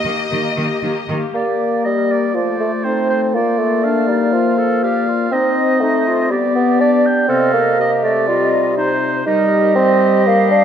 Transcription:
Already playing: violin section D#5
0.06 cello section D#3, viola section A#3 G4
0.31 cello section D#3, viola section A#3 G4
0.57 cello section D#3, viola section A#3 G4
0.83 cello section D#3, viola section A#3 G4
1.09 cello section D#3, viola section A#3 G4
1.34 bassoon A#3, french horn section A#3, clarinet G4, flute section D5, oboe D5
1.85 bassoon G3, flute section A#4, oboe D#5
2.11 oboe D5
2.34 bassoon F3, french horn section A3, clarinet F4, flute section C5, oboe D5
2.60 bassoon A3
2.84 bassoon C4, clarinet D#4, oboe C5
3.10 oboe C5
3.34 bassoon A#3, french horn section A#3, clarinet F4, flute section D5, oboe D5
3.58 bassoon A3
3.84 clarinet D4, oboe F5
4.08 bassoon G3, clarinet D#4
4.32 bassoon F3, clarinet F4
4.58 clarinet A4
4.83 clarinet G4, flute section D5, oboe F5
5.09 clarinet F4
5.31 french horn section C4, bassoon C4, clarinet D#4, flute section D#5, oboe D#5
5.80 bassoon A3, clarinet D#4, flute section C5
6.08 clarinet F4
6.30 bassoon G3, french horn section B3, clarinet G4, flute section D5, oboe D5
6.55 bassoon B3
6.80 bassoon D4, oboe D5
7.06 oboe G5
7.28 french horn section C3, bassoon C4, clarinet A4, flute section D#5, oboe F5
7.53 bassoon A#3
7.80 clarinet G4, oboe D#5
8.03 bassoon A3, oboe D5
8.27 bassoon G3, clarinet F4, flute section D#5
8.77 clarinet D#4, flute section C5, oboe C5
9.26 french horn section G3, bassoon D#4, clarinet G4, flute section A#4, oboe D#5
9.75 bassoon C4, flute section D#5
10.26 bassoon A#3, flute section F5
10.51 bassoon D4

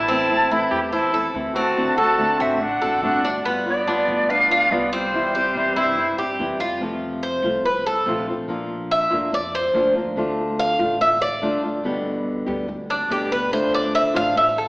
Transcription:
Already playing: upright bass A1, trumpet E4, flute A5
0.08 nylon-string guitar E3 A3 C4 E4, cuban tres C4
0.30 nylon-string guitar A3 C4 E4
0.50 nylon-string guitar E3 A3 C4 E4, trumpet E4, cuban tres E4, flute B5
0.71 upright bass E2, trumpet G4, flute B5
0.92 trumpet E4, cuban tres C5, flute A5, muted nylon-string guitar stroke
1.13 nylon-string guitar A3 C4 E4, cuban tres A4
1.34 upright bass D2, nylon-string guitar E3 A3 C4 E4
1.55 nylon-string guitar A3 C4 E4, cuban tres C4, trumpet F#4, flute A5
1.76 nylon-string guitar D3 A3 C4 F#4
1.96 nylon-string guitar A3 C4 F#4, trumpet F#4, cuban tres A4, flute A5
2.18 nylon-string guitar D3 A3 C4 F#4
2.40 upright bass A1, trumpet C4, cuban tres F#4, flute E5
2.61 trumpet D4, flute F#5, muted nylon-string guitar stroke
2.82 upright bass A1, nylon-string guitar A3 C4 F#4, cuban tres A4
3.02 upright bass G1, nylon-string guitar D3 A3 C4 F#4, trumpet D4, flute F#5
3.24 nylon-string guitar A3 C4 F#4, cuban tres D4
3.45 nylon-string guitar G3 B3 F4, cuban tres B3
3.66 trumpet B3, nylon-string guitar B3 F4, flute D5
3.86 nylon-string guitar G3 B3 F4, cuban tres D4
4.08 upright bass D2
4.28 trumpet D4, cuban tres B4, flute F5, muted nylon-string guitar stroke
4.50 nylon-string guitar B3 F4, cuban tres F4
4.71 upright bass C2, nylon-string guitar G3 B3 F4, trumpet B3, flute D5
4.92 trumpet G3, nylon-string guitar B3 F4, cuban tres C4, flute C5
5.13 nylon-string guitar C3 E3 G3 C4 E4
5.34 nylon-string guitar G3 C4 E4, cuban tres G4
5.55 nylon-string guitar C3 E3 G3 C4 E4
5.76 upright bass G2, cuban tres E4
5.97 muted nylon-string guitar stroke
6.18 upright bass G2, nylon-string guitar G3 C4 E4, cuban tres G4
6.39 upright bass F2, nylon-string guitar C3 E3 G3 C4 E4
6.60 nylon-string guitar G3 C4 E4, cuban tres F4
6.81 nylon-string guitar C3 F3 A3 C4 F4
7.23 cuban tres C5
7.43 upright bass C2, nylon-string guitar F3 A3 C4 F4
7.65 cuban tres B4, muted nylon-string guitar stroke
7.86 cuban tres A4
8.06 upright bass A#1, nylon-string guitar C3 F3 A3 C4 F4
8.28 nylon-string guitar A3 C4 F4
8.48 nylon-string guitar F3 A#3 D4 F4
8.91 cuban tres E5
9.10 upright bass F2, nylon-string guitar A#3 D4 F4
9.32 cuban tres D5, muted nylon-string guitar stroke
9.55 cuban tres C5
9.73 upright bass D2, nylon-string guitar F3 A#3 D4 F4
9.95 nylon-string guitar A#3 D4 F4
10.16 nylon-string guitar D3 A3 D4 F4
10.59 cuban tres F5
10.79 upright bass A1, nylon-string guitar A3 D4 F4
11.01 cuban tres E5, muted nylon-string guitar stroke
11.22 cuban tres D5
11.42 upright bass G1, nylon-string guitar D3 A3 D4 F4
11.63 nylon-string guitar A3 D4 F4
11.84 nylon-string guitar B2 D3 G3 B3 G4
12.46 upright bass D2, nylon-string guitar D3 G3 B3 G4
12.68 muted nylon-string guitar stroke
12.90 cuban tres D4
13.10 upright bass D2, nylon-string guitar B2 D3 G3 B3 G4, cuban tres G4
13.31 nylon-string guitar G3 B3 G4, cuban tres B4
13.51 nylon-string guitar D3 A3 D4 F4, cuban tres C5
13.74 cuban tres D5
13.95 cuban tres E5
14.14 upright bass A1, nylon-string guitar A3 D4 F4, cuban tres F5
14.35 cuban tres E5, muted nylon-string guitar stroke
14.58 cuban tres A4

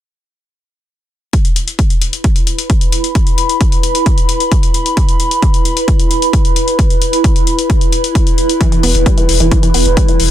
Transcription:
1.33 ambient pad E4, kick, closed hi-hat
1.45 closed hi-hat
1.55 ambient pad B4, closed hi-hat
1.68 closed hi-hat
1.76 ambient pad B5, kick, closed hi-hat
1.90 closed hi-hat
2.01 closed hi-hat
2.13 closed hi-hat
2.24 kick, closed hi-hat
2.36 closed hi-hat
2.47 closed hi-hat
2.58 closed hi-hat
2.70 kick, closed hi-hat
2.81 closed hi-hat
2.92 closed hi-hat
3.04 closed hi-hat
3.15 kick, closed hi-hat
3.27 closed hi-hat
3.38 closed hi-hat
3.49 closed hi-hat
3.61 kick, closed hi-hat
3.72 closed hi-hat
3.83 closed hi-hat
3.95 closed hi-hat
4.06 kick, closed hi-hat
4.18 closed hi-hat
4.29 closed hi-hat
4.40 closed hi-hat
4.52 kick, closed hi-hat
4.63 closed hi-hat
4.74 closed hi-hat
4.86 closed hi-hat
4.97 kick, closed hi-hat
5.09 closed hi-hat
5.20 closed hi-hat
5.31 closed hi-hat
5.42 kick, closed hi-hat
5.54 closed hi-hat
5.65 closed hi-hat
5.77 closed hi-hat
5.88 kick, closed hi-hat
5.99 closed hi-hat
6.11 closed hi-hat
6.22 closed hi-hat
6.33 kick, closed hi-hat
6.45 closed hi-hat
6.56 closed hi-hat
6.68 closed hi-hat
6.79 kick, closed hi-hat
6.90 closed hi-hat
7.02 closed hi-hat
7.13 closed hi-hat
7.24 kick, closed hi-hat
7.36 closed hi-hat
7.47 closed hi-hat
7.59 closed hi-hat
7.70 kick, closed hi-hat
7.81 closed hi-hat
7.92 closed hi-hat
8.04 closed hi-hat
8.15 kick, closed hi-hat
8.27 closed hi-hat
8.38 closed hi-hat
8.49 closed hi-hat
8.61 synth arpeggio sound E3, kick, closed hi-hat
8.72 synth arpeggio sound E3, closed hi-hat
8.83 sub bass E1, synth arpeggio sound B3, open hi-hat
8.95 sub bass E1, closed hi-hat
9.06 synth arpeggio sound G3, kick, closed hi-hat
9.18 synth arpeggio sound E3, closed hi-hat
9.29 sub bass E1, open hi-hat
9.40 sub bass E1, synth arpeggio sound E3, closed hi-hat
9.51 synth arpeggio sound E3, kick, closed hi-hat
9.63 synth arpeggio sound E3, closed hi-hat
9.74 sub bass E1, synth arpeggio sound B3, open hi-hat
9.85 sub bass E1, ambient pad A5, closed hi-hat
9.97 synth arpeggio sound G3, kick, closed hi-hat
10.08 synth arpeggio sound E3, closed hi-hat
10.20 sub bass E1, open hi-hat

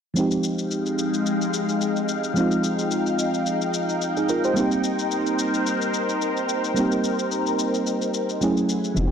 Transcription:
0.14 fm electric piano F3 G#3 C4, analog synth pad G#3 D#4 F5 G5, shaker
0.18 fm electric piano D#4 G4
0.31 shaker
0.44 shaker
0.59 shaker
0.71 shaker
0.86 shaker
0.99 shaker
1.14 shaker
1.26 shaker
1.42 shaker
1.54 shaker
1.69 shaker
1.81 shaker
1.96 shaker
2.09 shaker
2.24 shaker
2.34 fm electric piano F3 G#3 C4, shaker
2.38 fm electric piano D#4 F4
2.51 shaker
2.64 shaker
2.79 shaker
2.91 shaker
3.06 shaker
3.19 shaker
3.34 shaker
3.46 shaker
3.62 shaker
3.74 shaker
3.89 shaker
4.02 shaker
4.17 fm electric piano D#4 G#4, shaker
4.29 fm electric piano F4 A#4, shaker
4.44 fm electric piano G4 C5, shaker
4.54 fm electric piano G3 A#3 C4, analog synth pad A#4 C5, shaker
4.59 fm electric piano D#4 G4
4.72 shaker
4.84 shaker
4.99 shaker
5.11 shaker
5.26 shaker
5.39 shaker
5.54 shaker
5.66 shaker
5.82 shaker
5.94 shaker
6.09 shaker
6.22 shaker
6.37 shaker
6.49 shaker
6.64 shaker
6.74 fm electric piano G3 A#3 C4, shaker
6.79 fm electric piano D#4 G4
6.92 shaker
7.04 shaker
7.19 shaker
7.31 shaker
7.47 shaker
7.59 shaker
7.74 shaker
7.87 shaker
8.02 shaker
8.14 shaker
8.29 shaker
8.41 fm electric piano F#3 A3 C#4 E4 G#4, analog synth pad A3 E4 F#5 G#5, shaker
8.57 shaker
8.69 shaker
8.84 shaker
8.95 sub bass F1, fm electric piano F3 G#3 C4, analog synth pad G#3 D#4 F5 G5, low conga, shaker
8.99 fm electric piano D#4 F#4
9.07 fm electric piano G4

